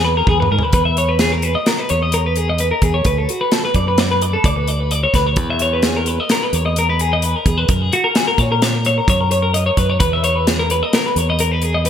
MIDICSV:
0, 0, Header, 1, 4, 480
1, 0, Start_track
1, 0, Tempo, 463679
1, 762, Time_signature, 5, 2, 24, 8
1, 12315, End_track
2, 0, Start_track
2, 0, Title_t, "Clean electric guitar"
2, 0, Program_c, 0, 27
2, 48, Note_on_c, 0, 71, 66
2, 165, Note_off_c, 0, 71, 0
2, 178, Note_on_c, 0, 70, 62
2, 290, Note_off_c, 0, 70, 0
2, 298, Note_on_c, 0, 68, 68
2, 410, Note_off_c, 0, 68, 0
2, 416, Note_on_c, 0, 71, 67
2, 529, Note_off_c, 0, 71, 0
2, 537, Note_on_c, 0, 70, 68
2, 651, Note_off_c, 0, 70, 0
2, 651, Note_on_c, 0, 71, 64
2, 753, Note_off_c, 0, 71, 0
2, 766, Note_on_c, 0, 71, 74
2, 880, Note_off_c, 0, 71, 0
2, 884, Note_on_c, 0, 76, 61
2, 1003, Note_off_c, 0, 76, 0
2, 1015, Note_on_c, 0, 73, 60
2, 1125, Note_on_c, 0, 71, 58
2, 1129, Note_off_c, 0, 73, 0
2, 1239, Note_off_c, 0, 71, 0
2, 1243, Note_on_c, 0, 68, 63
2, 1368, Note_off_c, 0, 68, 0
2, 1368, Note_on_c, 0, 70, 65
2, 1485, Note_off_c, 0, 70, 0
2, 1485, Note_on_c, 0, 71, 60
2, 1604, Note_off_c, 0, 71, 0
2, 1605, Note_on_c, 0, 75, 58
2, 1724, Note_off_c, 0, 75, 0
2, 1733, Note_on_c, 0, 70, 66
2, 1853, Note_off_c, 0, 70, 0
2, 1853, Note_on_c, 0, 71, 62
2, 1967, Note_on_c, 0, 73, 62
2, 1968, Note_off_c, 0, 71, 0
2, 2085, Note_off_c, 0, 73, 0
2, 2096, Note_on_c, 0, 75, 54
2, 2210, Note_off_c, 0, 75, 0
2, 2214, Note_on_c, 0, 70, 74
2, 2328, Note_off_c, 0, 70, 0
2, 2343, Note_on_c, 0, 71, 63
2, 2453, Note_off_c, 0, 71, 0
2, 2453, Note_on_c, 0, 68, 64
2, 2568, Note_off_c, 0, 68, 0
2, 2583, Note_on_c, 0, 75, 61
2, 2693, Note_off_c, 0, 75, 0
2, 2695, Note_on_c, 0, 71, 68
2, 2804, Note_off_c, 0, 71, 0
2, 2809, Note_on_c, 0, 70, 62
2, 2931, Note_off_c, 0, 70, 0
2, 2931, Note_on_c, 0, 68, 64
2, 3044, Note_on_c, 0, 73, 58
2, 3047, Note_off_c, 0, 68, 0
2, 3164, Note_off_c, 0, 73, 0
2, 3170, Note_on_c, 0, 71, 69
2, 3296, Note_off_c, 0, 71, 0
2, 3296, Note_on_c, 0, 69, 65
2, 3419, Note_off_c, 0, 69, 0
2, 3419, Note_on_c, 0, 66, 66
2, 3530, Note_on_c, 0, 71, 57
2, 3532, Note_off_c, 0, 66, 0
2, 3654, Note_off_c, 0, 71, 0
2, 3654, Note_on_c, 0, 69, 65
2, 3769, Note_off_c, 0, 69, 0
2, 3777, Note_on_c, 0, 71, 64
2, 3886, Note_off_c, 0, 71, 0
2, 3890, Note_on_c, 0, 74, 58
2, 4007, Note_off_c, 0, 74, 0
2, 4017, Note_on_c, 0, 71, 60
2, 4134, Note_off_c, 0, 71, 0
2, 4134, Note_on_c, 0, 74, 69
2, 4250, Note_off_c, 0, 74, 0
2, 4259, Note_on_c, 0, 71, 58
2, 4373, Note_off_c, 0, 71, 0
2, 4373, Note_on_c, 0, 74, 65
2, 4486, Note_on_c, 0, 69, 57
2, 4489, Note_off_c, 0, 74, 0
2, 4606, Note_off_c, 0, 69, 0
2, 4614, Note_on_c, 0, 74, 80
2, 4724, Note_off_c, 0, 74, 0
2, 4724, Note_on_c, 0, 71, 68
2, 4848, Note_off_c, 0, 71, 0
2, 4848, Note_on_c, 0, 74, 63
2, 4974, Note_off_c, 0, 74, 0
2, 4974, Note_on_c, 0, 71, 65
2, 5087, Note_off_c, 0, 71, 0
2, 5087, Note_on_c, 0, 74, 67
2, 5206, Note_off_c, 0, 74, 0
2, 5212, Note_on_c, 0, 73, 61
2, 5329, Note_off_c, 0, 73, 0
2, 5333, Note_on_c, 0, 71, 65
2, 5452, Note_off_c, 0, 71, 0
2, 5452, Note_on_c, 0, 73, 55
2, 5566, Note_off_c, 0, 73, 0
2, 5566, Note_on_c, 0, 71, 80
2, 5686, Note_off_c, 0, 71, 0
2, 5698, Note_on_c, 0, 76, 66
2, 5812, Note_off_c, 0, 76, 0
2, 5817, Note_on_c, 0, 73, 69
2, 5931, Note_off_c, 0, 73, 0
2, 5933, Note_on_c, 0, 71, 62
2, 6048, Note_off_c, 0, 71, 0
2, 6048, Note_on_c, 0, 68, 69
2, 6167, Note_off_c, 0, 68, 0
2, 6175, Note_on_c, 0, 70, 66
2, 6290, Note_off_c, 0, 70, 0
2, 6290, Note_on_c, 0, 71, 67
2, 6417, Note_off_c, 0, 71, 0
2, 6417, Note_on_c, 0, 75, 59
2, 6531, Note_off_c, 0, 75, 0
2, 6537, Note_on_c, 0, 70, 67
2, 6651, Note_off_c, 0, 70, 0
2, 6656, Note_on_c, 0, 71, 60
2, 6776, Note_off_c, 0, 71, 0
2, 6776, Note_on_c, 0, 73, 66
2, 6887, Note_off_c, 0, 73, 0
2, 6891, Note_on_c, 0, 75, 55
2, 7008, Note_off_c, 0, 75, 0
2, 7024, Note_on_c, 0, 70, 78
2, 7134, Note_off_c, 0, 70, 0
2, 7138, Note_on_c, 0, 71, 67
2, 7257, Note_off_c, 0, 71, 0
2, 7257, Note_on_c, 0, 68, 66
2, 7371, Note_off_c, 0, 68, 0
2, 7382, Note_on_c, 0, 75, 65
2, 7490, Note_off_c, 0, 75, 0
2, 7490, Note_on_c, 0, 71, 71
2, 7619, Note_off_c, 0, 71, 0
2, 7619, Note_on_c, 0, 70, 66
2, 7731, Note_off_c, 0, 70, 0
2, 7731, Note_on_c, 0, 68, 67
2, 7843, Note_off_c, 0, 68, 0
2, 7843, Note_on_c, 0, 71, 62
2, 7970, Note_off_c, 0, 71, 0
2, 7970, Note_on_c, 0, 70, 83
2, 8092, Note_off_c, 0, 70, 0
2, 8092, Note_on_c, 0, 68, 67
2, 8208, Note_off_c, 0, 68, 0
2, 8212, Note_on_c, 0, 66, 65
2, 8324, Note_on_c, 0, 70, 63
2, 8328, Note_off_c, 0, 66, 0
2, 8451, Note_off_c, 0, 70, 0
2, 8451, Note_on_c, 0, 68, 68
2, 8562, Note_off_c, 0, 68, 0
2, 8567, Note_on_c, 0, 70, 63
2, 8687, Note_off_c, 0, 70, 0
2, 8687, Note_on_c, 0, 73, 65
2, 8806, Note_off_c, 0, 73, 0
2, 8818, Note_on_c, 0, 70, 62
2, 8928, Note_off_c, 0, 70, 0
2, 8928, Note_on_c, 0, 73, 71
2, 9053, Note_off_c, 0, 73, 0
2, 9053, Note_on_c, 0, 70, 61
2, 9168, Note_off_c, 0, 70, 0
2, 9176, Note_on_c, 0, 73, 66
2, 9293, Note_off_c, 0, 73, 0
2, 9293, Note_on_c, 0, 70, 61
2, 9408, Note_off_c, 0, 70, 0
2, 9416, Note_on_c, 0, 73, 80
2, 9531, Note_off_c, 0, 73, 0
2, 9531, Note_on_c, 0, 70, 60
2, 9640, Note_off_c, 0, 70, 0
2, 9644, Note_on_c, 0, 73, 61
2, 9753, Note_off_c, 0, 73, 0
2, 9757, Note_on_c, 0, 70, 64
2, 9874, Note_off_c, 0, 70, 0
2, 9878, Note_on_c, 0, 75, 68
2, 9999, Note_off_c, 0, 75, 0
2, 10003, Note_on_c, 0, 73, 65
2, 10123, Note_off_c, 0, 73, 0
2, 10129, Note_on_c, 0, 71, 62
2, 10244, Note_off_c, 0, 71, 0
2, 10244, Note_on_c, 0, 73, 58
2, 10346, Note_off_c, 0, 73, 0
2, 10351, Note_on_c, 0, 71, 78
2, 10476, Note_off_c, 0, 71, 0
2, 10489, Note_on_c, 0, 76, 62
2, 10599, Note_off_c, 0, 76, 0
2, 10603, Note_on_c, 0, 73, 66
2, 10721, Note_off_c, 0, 73, 0
2, 10721, Note_on_c, 0, 71, 63
2, 10841, Note_off_c, 0, 71, 0
2, 10841, Note_on_c, 0, 68, 67
2, 10961, Note_off_c, 0, 68, 0
2, 10968, Note_on_c, 0, 70, 67
2, 11084, Note_off_c, 0, 70, 0
2, 11090, Note_on_c, 0, 71, 66
2, 11209, Note_off_c, 0, 71, 0
2, 11209, Note_on_c, 0, 75, 58
2, 11325, Note_off_c, 0, 75, 0
2, 11330, Note_on_c, 0, 70, 75
2, 11445, Note_off_c, 0, 70, 0
2, 11452, Note_on_c, 0, 71, 61
2, 11572, Note_off_c, 0, 71, 0
2, 11572, Note_on_c, 0, 73, 61
2, 11686, Note_off_c, 0, 73, 0
2, 11696, Note_on_c, 0, 75, 61
2, 11805, Note_on_c, 0, 70, 78
2, 11808, Note_off_c, 0, 75, 0
2, 11920, Note_off_c, 0, 70, 0
2, 11920, Note_on_c, 0, 71, 64
2, 12039, Note_off_c, 0, 71, 0
2, 12039, Note_on_c, 0, 68, 68
2, 12159, Note_off_c, 0, 68, 0
2, 12159, Note_on_c, 0, 75, 62
2, 12276, Note_on_c, 0, 71, 73
2, 12279, Note_off_c, 0, 75, 0
2, 12315, Note_off_c, 0, 71, 0
2, 12315, End_track
3, 0, Start_track
3, 0, Title_t, "Fingered electric bass"
3, 0, Program_c, 1, 33
3, 0, Note_on_c, 1, 40, 88
3, 220, Note_off_c, 1, 40, 0
3, 282, Note_on_c, 1, 40, 77
3, 491, Note_off_c, 1, 40, 0
3, 532, Note_on_c, 1, 44, 83
3, 632, Note_off_c, 1, 44, 0
3, 755, Note_on_c, 1, 40, 93
3, 1595, Note_off_c, 1, 40, 0
3, 1973, Note_on_c, 1, 40, 74
3, 2805, Note_off_c, 1, 40, 0
3, 2918, Note_on_c, 1, 40, 84
3, 3130, Note_off_c, 1, 40, 0
3, 3160, Note_on_c, 1, 38, 85
3, 3371, Note_off_c, 1, 38, 0
3, 3877, Note_on_c, 1, 42, 74
3, 4508, Note_off_c, 1, 42, 0
3, 4595, Note_on_c, 1, 38, 83
3, 5227, Note_off_c, 1, 38, 0
3, 5320, Note_on_c, 1, 38, 82
3, 5555, Note_off_c, 1, 38, 0
3, 5555, Note_on_c, 1, 40, 95
3, 6396, Note_off_c, 1, 40, 0
3, 6757, Note_on_c, 1, 40, 84
3, 7596, Note_off_c, 1, 40, 0
3, 7718, Note_on_c, 1, 40, 81
3, 7930, Note_off_c, 1, 40, 0
3, 7960, Note_on_c, 1, 42, 86
3, 8171, Note_off_c, 1, 42, 0
3, 8679, Note_on_c, 1, 46, 81
3, 9308, Note_off_c, 1, 46, 0
3, 9402, Note_on_c, 1, 42, 83
3, 10029, Note_off_c, 1, 42, 0
3, 10117, Note_on_c, 1, 42, 75
3, 10355, Note_off_c, 1, 42, 0
3, 10355, Note_on_c, 1, 40, 90
3, 11193, Note_off_c, 1, 40, 0
3, 11550, Note_on_c, 1, 40, 77
3, 12315, Note_off_c, 1, 40, 0
3, 12315, End_track
4, 0, Start_track
4, 0, Title_t, "Drums"
4, 279, Note_on_c, 9, 36, 87
4, 282, Note_on_c, 9, 47, 55
4, 383, Note_off_c, 9, 36, 0
4, 386, Note_off_c, 9, 47, 0
4, 438, Note_on_c, 9, 45, 68
4, 541, Note_off_c, 9, 45, 0
4, 605, Note_on_c, 9, 43, 74
4, 709, Note_off_c, 9, 43, 0
4, 752, Note_on_c, 9, 42, 70
4, 757, Note_on_c, 9, 36, 91
4, 855, Note_off_c, 9, 42, 0
4, 860, Note_off_c, 9, 36, 0
4, 1002, Note_on_c, 9, 42, 50
4, 1106, Note_off_c, 9, 42, 0
4, 1231, Note_on_c, 9, 42, 67
4, 1235, Note_on_c, 9, 38, 86
4, 1334, Note_off_c, 9, 42, 0
4, 1338, Note_off_c, 9, 38, 0
4, 1474, Note_on_c, 9, 42, 48
4, 1577, Note_off_c, 9, 42, 0
4, 1720, Note_on_c, 9, 42, 68
4, 1724, Note_on_c, 9, 38, 88
4, 1824, Note_off_c, 9, 42, 0
4, 1828, Note_off_c, 9, 38, 0
4, 1957, Note_on_c, 9, 42, 53
4, 2061, Note_off_c, 9, 42, 0
4, 2195, Note_on_c, 9, 42, 77
4, 2299, Note_off_c, 9, 42, 0
4, 2439, Note_on_c, 9, 42, 52
4, 2542, Note_off_c, 9, 42, 0
4, 2675, Note_on_c, 9, 42, 70
4, 2778, Note_off_c, 9, 42, 0
4, 2917, Note_on_c, 9, 42, 55
4, 2919, Note_on_c, 9, 36, 71
4, 3020, Note_off_c, 9, 42, 0
4, 3022, Note_off_c, 9, 36, 0
4, 3153, Note_on_c, 9, 42, 73
4, 3158, Note_on_c, 9, 36, 99
4, 3257, Note_off_c, 9, 42, 0
4, 3262, Note_off_c, 9, 36, 0
4, 3404, Note_on_c, 9, 42, 55
4, 3508, Note_off_c, 9, 42, 0
4, 3639, Note_on_c, 9, 42, 71
4, 3643, Note_on_c, 9, 38, 91
4, 3743, Note_off_c, 9, 42, 0
4, 3747, Note_off_c, 9, 38, 0
4, 3875, Note_on_c, 9, 42, 46
4, 3877, Note_on_c, 9, 36, 62
4, 3979, Note_off_c, 9, 42, 0
4, 3981, Note_off_c, 9, 36, 0
4, 4117, Note_on_c, 9, 42, 66
4, 4121, Note_on_c, 9, 38, 96
4, 4220, Note_off_c, 9, 42, 0
4, 4224, Note_off_c, 9, 38, 0
4, 4364, Note_on_c, 9, 42, 50
4, 4467, Note_off_c, 9, 42, 0
4, 4598, Note_on_c, 9, 36, 96
4, 4600, Note_on_c, 9, 42, 68
4, 4701, Note_off_c, 9, 36, 0
4, 4703, Note_off_c, 9, 42, 0
4, 4839, Note_on_c, 9, 42, 51
4, 4943, Note_off_c, 9, 42, 0
4, 5081, Note_on_c, 9, 42, 62
4, 5185, Note_off_c, 9, 42, 0
4, 5318, Note_on_c, 9, 36, 70
4, 5319, Note_on_c, 9, 42, 54
4, 5324, Note_on_c, 9, 38, 31
4, 5422, Note_off_c, 9, 36, 0
4, 5423, Note_off_c, 9, 42, 0
4, 5427, Note_off_c, 9, 38, 0
4, 5549, Note_on_c, 9, 42, 69
4, 5556, Note_on_c, 9, 36, 99
4, 5653, Note_off_c, 9, 42, 0
4, 5660, Note_off_c, 9, 36, 0
4, 5790, Note_on_c, 9, 42, 58
4, 5894, Note_off_c, 9, 42, 0
4, 6030, Note_on_c, 9, 42, 66
4, 6034, Note_on_c, 9, 38, 91
4, 6134, Note_off_c, 9, 42, 0
4, 6138, Note_off_c, 9, 38, 0
4, 6273, Note_on_c, 9, 42, 55
4, 6377, Note_off_c, 9, 42, 0
4, 6515, Note_on_c, 9, 42, 70
4, 6519, Note_on_c, 9, 38, 92
4, 6619, Note_off_c, 9, 42, 0
4, 6623, Note_off_c, 9, 38, 0
4, 6760, Note_on_c, 9, 42, 54
4, 6863, Note_off_c, 9, 42, 0
4, 7000, Note_on_c, 9, 42, 74
4, 7104, Note_off_c, 9, 42, 0
4, 7240, Note_on_c, 9, 42, 52
4, 7343, Note_off_c, 9, 42, 0
4, 7477, Note_on_c, 9, 42, 73
4, 7581, Note_off_c, 9, 42, 0
4, 7720, Note_on_c, 9, 36, 72
4, 7720, Note_on_c, 9, 42, 56
4, 7823, Note_off_c, 9, 36, 0
4, 7823, Note_off_c, 9, 42, 0
4, 7956, Note_on_c, 9, 42, 72
4, 7959, Note_on_c, 9, 36, 98
4, 8059, Note_off_c, 9, 42, 0
4, 8062, Note_off_c, 9, 36, 0
4, 8205, Note_on_c, 9, 42, 52
4, 8309, Note_off_c, 9, 42, 0
4, 8439, Note_on_c, 9, 42, 68
4, 8443, Note_on_c, 9, 38, 93
4, 8542, Note_off_c, 9, 42, 0
4, 8546, Note_off_c, 9, 38, 0
4, 8677, Note_on_c, 9, 36, 68
4, 8677, Note_on_c, 9, 42, 49
4, 8780, Note_off_c, 9, 36, 0
4, 8780, Note_off_c, 9, 42, 0
4, 8923, Note_on_c, 9, 42, 70
4, 8927, Note_on_c, 9, 38, 92
4, 9026, Note_off_c, 9, 42, 0
4, 9031, Note_off_c, 9, 38, 0
4, 9158, Note_on_c, 9, 42, 50
4, 9262, Note_off_c, 9, 42, 0
4, 9398, Note_on_c, 9, 36, 99
4, 9402, Note_on_c, 9, 42, 73
4, 9501, Note_off_c, 9, 36, 0
4, 9506, Note_off_c, 9, 42, 0
4, 9639, Note_on_c, 9, 42, 48
4, 9742, Note_off_c, 9, 42, 0
4, 9879, Note_on_c, 9, 42, 67
4, 9982, Note_off_c, 9, 42, 0
4, 10116, Note_on_c, 9, 42, 55
4, 10117, Note_on_c, 9, 36, 68
4, 10220, Note_off_c, 9, 42, 0
4, 10221, Note_off_c, 9, 36, 0
4, 10353, Note_on_c, 9, 42, 77
4, 10356, Note_on_c, 9, 36, 100
4, 10456, Note_off_c, 9, 42, 0
4, 10460, Note_off_c, 9, 36, 0
4, 10598, Note_on_c, 9, 42, 56
4, 10701, Note_off_c, 9, 42, 0
4, 10839, Note_on_c, 9, 42, 74
4, 10844, Note_on_c, 9, 38, 88
4, 10943, Note_off_c, 9, 42, 0
4, 10947, Note_off_c, 9, 38, 0
4, 11077, Note_on_c, 9, 42, 57
4, 11180, Note_off_c, 9, 42, 0
4, 11315, Note_on_c, 9, 42, 71
4, 11319, Note_on_c, 9, 38, 95
4, 11418, Note_off_c, 9, 42, 0
4, 11422, Note_off_c, 9, 38, 0
4, 11557, Note_on_c, 9, 42, 55
4, 11660, Note_off_c, 9, 42, 0
4, 11788, Note_on_c, 9, 42, 83
4, 11892, Note_off_c, 9, 42, 0
4, 12025, Note_on_c, 9, 42, 50
4, 12129, Note_off_c, 9, 42, 0
4, 12269, Note_on_c, 9, 42, 69
4, 12315, Note_off_c, 9, 42, 0
4, 12315, End_track
0, 0, End_of_file